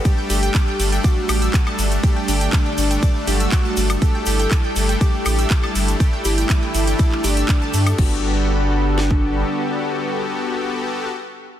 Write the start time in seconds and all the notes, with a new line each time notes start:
Already playing: G3
0.05 A3 D4 G4 A4 G5, kick, closed hi-hat, ride, shaker
0.18 G5 G6
0.30 G1 G4 G5, open hi-hat, ride, shaker
0.43 G5 G6, closed hi-hat, shaker
0.54 D6, kick, clap, closed hi-hat, ride, shaker
0.68 G5 G6
0.80 G1 G3 A3 D4 A4, open hi-hat, ride, shaker
0.92 G5 G6, closed hi-hat, shaker
1.04 F#4 D6, kick, closed hi-hat, ride, shaker
1.29 A1 G4 G5, open hi-hat, ride, high woodblock, shaker
1.42 E6, closed hi-hat, shaker
1.54 D6, kick, clap, closed hi-hat, ride, shaker
1.67 A5 A6, high woodblock
1.79 G1, open hi-hat, ride, shaker
1.92 closed hi-hat, shaker
2.03 A3 D4 G4 A4 G5, kick, closed hi-hat, ride, shaker
2.16 G5 G6
2.28 G1 D4 G4 G5, open hi-hat, ride, shaker
2.41 G5 G6, closed hi-hat, shaker
2.53 D6, kick, clap, closed hi-hat, ride, shaker
2.66 G5 G6
2.78 G1 G3 A3 D4 A4, open hi-hat, ride, shaker
2.91 G5 G6, closed hi-hat, shaker
3.02 D6, kick, closed hi-hat, ride, shaker
3.27 G1 F#4 G4 G5, open hi-hat, ride, shaker
3.40 E6, closed hi-hat, shaker
3.52 D6, kick, clap, closed hi-hat, ride, shaker
3.65 A5 A6
3.77 G1, open hi-hat, ride, shaker
3.90 closed hi-hat, high woodblock, shaker
4.02 A3 D4 E4 G4 A4 G5, kick, closed hi-hat, ride, shaker
4.15 G5 G6
4.26 G1 G4 G5, open hi-hat, ride, shaker
4.39 G5 G6, closed hi-hat, shaker
4.51 D6, kick, clap, closed hi-hat, ride, shaker
4.64 G5 G6
4.76 G1 A3 D4 G4 A4, open hi-hat, ride, shaker
4.89 G5 G6, closed hi-hat, shaker
5.01 G4 D6, kick, closed hi-hat, ride, shaker
5.25 A1 G4 G5, open hi-hat, ride, high woodblock, shaker
5.38 E6, closed hi-hat, shaker
5.50 D6, kick, clap, closed hi-hat, ride, shaker
5.63 A5 A6, high woodblock
5.75 G1, open hi-hat, ride, shaker
5.88 closed hi-hat, shaker
6.00 A3 D4 G4 A4 G5, kick, closed hi-hat, ride, shaker
6.13 G5 G6
6.25 G1 E4 G4 G5, open hi-hat, ride, shaker
6.38 G5 G6, closed hi-hat, shaker
6.49 D6, kick, clap, closed hi-hat, ride, shaker
6.63 G5 G6
6.74 G1 A3 D4 G4 A4, open hi-hat, ride, shaker
6.87 G5 G6, closed hi-hat, shaker
6.98 D6, kick, closed hi-hat, ride, shaker
7.12 clap
7.24 G1 D4 G4 G5, open hi-hat, ride, shaker
7.37 E6, closed hi-hat, shaker
7.49 D6, kick, clap, closed hi-hat, ride, shaker
7.62 A5 A6
7.74 G2, open hi-hat, ride, shaker
7.87 closed hi-hat, high woodblock, shaker
7.98 G1 G3 B3 D4 F#4 G4 A4 B4 F#5, kick, crash
8.98 snare
9.11 kick